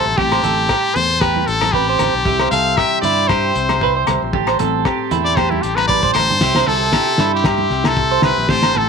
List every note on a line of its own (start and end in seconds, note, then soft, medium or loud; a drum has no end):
0.00 0.17 B2 medium
0.00 0.83 E3 medium
0.00 0.95 G3 medium
0.00 0.18 E4 medium
0.00 0.21 G4 medium
0.00 0.19 A4 loud
0.00 2.65 C5 medium
0.00 0.16 E5 medium
0.00 2.21 G5 medium
0.00 6.37 C6 medium
0.05 0.16 A1 medium
0.17 0.41 A1 loud
0.17 2.25 A2 medium
0.17 0.44 C4 medium
0.17 0.31 G4 loud
0.17 0.97 G4 medium
0.17 2.23 A5 medium
0.17 kick medium
0.17 low conga medium
0.32 0.43 C5 medium
0.32 cross-stick medium
0.32 low agogo medium
0.43 0.67 A1 loud
0.43 0.70 C4 medium
0.43 0.68 A4 medium
0.43 closed hi-hat medium
0.43 low conga medium
0.69 0.95 G4 medium
0.69 kick medium
0.69 cross-stick medium
0.69 low agogo medium
0.95 1.44 E2 medium
0.95 2.23 A3 medium
0.95 1.22 C5 loud
0.95 closed hi-hat soft
0.95 low conga medium
1.20 1.46 G4 loud
1.20 2.79 G4 medium
1.20 1.49 B4 medium
1.20 kick loud
1.20 cross-stick medium
1.20 low agogo medium
1.36 high conga medium
1.47 1.96 A1 medium
1.47 4.98 E3 medium
1.47 1.74 A4 loud
1.47 closed hi-hat medium
1.61 cross-stick medium
1.61 high conga medium
1.61 low agogo medium
1.72 2.26 C4 medium
1.72 2.51 G4 medium
1.72 1.88 B4 medium
1.72 kick medium
1.89 2.13 C5 medium
1.99 2.13 A1 loud
1.99 cross-stick medium
1.99 closed hi-hat medium
1.99 low conga medium
1.99 low agogo medium
2.13 2.26 B1 medium
2.25 2.49 C2 loud
2.25 3.55 C3 medium
2.25 3.03 G3 medium
2.25 2.52 E4 medium
2.25 2.39 G4 loud
2.25 4.31 E5 medium
2.25 6.37 G5 medium
2.25 kick medium
2.25 low conga medium
2.39 2.52 C5 medium
2.39 cross-stick medium
2.39 low agogo medium
2.51 2.75 C2 loud
2.51 4.61 E4 medium
2.51 2.77 A4 medium
2.51 2.79 F5 loud
2.51 closed hi-hat medium
2.51 low conga medium
2.77 3.03 G4 medium
2.77 3.30 G4 medium
2.77 3.01 E5 loud
2.77 kick medium
2.77 cross-stick medium
2.77 low agogo medium
3.01 3.51 G2 medium
3.01 5.11 G3 medium
3.01 3.29 E4 medium
3.01 3.29 D5 loud
3.01 closed hi-hat medium
3.01 low conga medium
3.28 3.55 G4 medium
3.28 3.82 G4 medium
3.28 4.07 C5 medium
3.28 kick loud
3.28 cross-stick medium
3.28 low agogo medium
3.55 4.04 C2 medium
3.55 4.31 C3 medium
3.55 closed hi-hat medium
3.69 cross-stick medium
3.69 high conga medium
3.69 low agogo medium
3.81 4.36 G4 medium
3.81 3.96 B4 medium
3.81 kick medium
3.97 4.21 C5 medium
4.07 4.21 C2 loud
4.07 4.33 C5 medium
4.07 cross-stick medium
4.07 closed hi-hat medium
4.07 low conga medium
4.07 low agogo medium
4.22 4.34 A#1 medium
4.33 4.57 A1 loud
4.33 6.41 A2 medium
4.33 4.47 G4 loud
4.33 6.15 C5 medium
4.33 6.39 A5 medium
4.33 kick loud
4.33 low conga medium
4.47 4.59 C5 medium
4.47 cross-stick medium
4.47 low agogo medium
4.59 4.83 A1 loud
4.59 6.68 C4 medium
4.59 4.84 A4 medium
4.59 closed hi-hat medium
4.59 high conga medium
4.59 low conga medium
4.85 5.10 G4 medium
4.85 5.37 G4 medium
4.85 kick medium
4.85 cross-stick medium
4.85 low agogo medium
5.11 5.59 E2 medium
5.11 6.39 A3 medium
5.11 5.36 E4 medium
5.11 closed hi-hat medium
5.11 low conga medium
5.25 5.37 D5 medium
5.36 5.62 G4 loud
5.36 5.89 G4 medium
5.36 5.52 C5 medium
5.36 kick loud
5.36 cross-stick medium
5.36 high conga medium
5.36 low agogo medium
5.50 5.64 E4 medium
5.50 high conga medium
5.62 6.12 A1 medium
5.62 6.39 E3 medium
5.62 5.77 G4 medium
5.62 closed hi-hat medium
5.76 5.87 B4 medium
5.76 cross-stick medium
5.76 high conga medium
5.76 low agogo medium
5.88 6.39 G4 medium
5.88 6.03 B4 medium
5.88 6.13 D5 loud
5.88 kick medium
5.88 high conga medium
6.03 6.28 C5 medium
6.03 kick medium
6.03 high conga medium
6.14 6.28 A1 loud
6.14 6.69 C5 loud
6.14 6.39 C5 medium
6.14 cross-stick medium
6.14 closed hi-hat medium
6.14 low conga medium
6.14 low agogo medium
6.30 6.40 G2 medium
6.30 low conga medium
6.41 6.65 C2 loud
6.41 7.69 C3 medium
6.41 6.55 E4 medium
6.41 6.55 G4 loud
6.41 8.47 E5 medium
6.41 8.47 G5 medium
6.41 8.47 C6 medium
6.41 kick medium
6.41 snare medium
6.41 crash medium
6.41 low conga medium
6.55 6.93 G4 medium
6.55 6.67 C5 medium
6.55 snare medium
6.55 low agogo medium
6.67 6.91 C2 loud
6.67 6.94 E4 medium
6.67 7.33 A4 loud
6.67 6.92 A4 medium
6.67 low conga medium
6.93 7.07 E4 medium
6.93 7.18 G4 medium
6.93 kick loud
6.93 snare medium
6.93 low agogo medium
7.07 7.97 G4 medium
7.18 7.67 G2 loud
7.18 8.49 G3 medium
7.18 7.44 E4 medium
7.18 snare medium
7.35 7.45 G4 medium
7.44 8.50 E4 medium
7.44 7.70 G4 medium
7.44 7.89 G4 medium
7.44 kick loud
7.44 snare medium
7.44 low agogo medium
7.58 high conga medium
7.70 8.19 C2 medium
7.70 8.46 C3 medium
7.70 snare soft
7.84 8.24 A4 loud
7.84 snare medium
7.84 high conga medium
7.84 low agogo medium
7.97 8.23 G4 medium
7.97 kick medium
8.11 8.36 C5 medium
8.22 8.35 C2 loud
8.22 8.51 G4 medium
8.22 8.51 B4 medium
8.22 snare medium
8.22 low conga medium
8.22 low agogo medium
8.38 8.49 A#1 medium
8.48 8.73 A1 loud
8.48 8.89 A2 medium
8.48 8.89 A3 medium
8.48 8.75 C4 medium
8.48 8.62 G4 loud
8.48 8.89 G4 medium
8.48 8.79 C5 loud
8.48 8.89 G5 medium
8.48 8.89 A5 medium
8.48 8.89 C6 medium
8.48 kick loud
8.48 snare medium
8.48 low conga medium
8.63 8.74 C5 medium
8.63 snare medium
8.63 low agogo medium
8.75 8.89 A1 loud
8.75 8.89 C4 medium
8.75 8.89 A4 medium
8.75 low conga medium